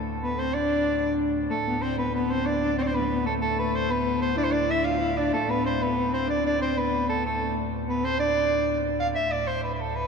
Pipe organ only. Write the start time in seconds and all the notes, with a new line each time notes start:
Already playing: D2 A2
1.49 D2 A2
5.33 D2 A2
9.16 D2 A2